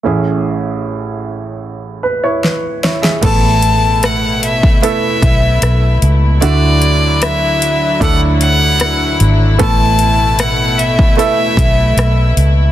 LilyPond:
<<
  \new Staff \with { instrumentName = "Violin" } { \time 4/4 \key a \major \tempo 4 = 76 r1 | a''4 fis''8 e''8 e''4. r8 | d''4 e''4 fis''8 fis''4 r8 | a''4 fis''8 e''8 e''4. r8 | }
  \new Staff \with { instrumentName = "Grand piano" } { \time 4/4 \key a \major << { r2 r8 b'16 <e' cis''>16 b'8 <e' cis''>16 <gis' e''>16~ | <gis' e''>16 r2. r8. | r1 | r1 | } \\ { <a cis' e' gis'>2. r4 | <a b e' a'>2 <a b e' a'>2 | <a d' e' fis'>2 <a d' e' a'>2 | <a b e' a'>2 <a b e' a'>2 | } >> }
  \new Staff \with { instrumentName = "Grand piano" } { \clef bass \time 4/4 \key a \major <a,, a,>1 | a,4. r2 r8 | d4. r2 r8 | a,4. r2 r8 | }
  \new Staff \with { instrumentName = "String section" } { \clef bass \time 4/4 \key a \major << { r1 | e'1~ | e'1~ | e'1 | } \\ { r1 | <b, a>1 | <d fis>1 | <b, a>1 | } >> }
  \new Staff \with { instrumentName = "Fingered electric bass" } { \clef bass \time 4/4 \key a \major r1 | a,,2~ a,,16 r16 b,,8 b,,8 cis,8 | d,2 d,4. gis,,8 | a,,2~ a,,16 r16 b,,8 b,,8 cis,8 | }
  \new DrumStaff \with { instrumentName = "Drums" } \drummode { \time 4/4 r4 r4 r4 sn8 sn16 sn16 | <cymc hh bd>8 hh8 <hh ss>8 hh16 bd16 hh8 <hh bd>8 <hh ss>8 hh8 | hh8 hh8 <hh ss>8 hh8 <hh bd>8 hh8 <hh ss>8 hh8 | <hh bd>8 hh8 <hh ss>8 hh16 bd16 hh8 <hh bd>8 <hh ss>8 hh8 | }
>>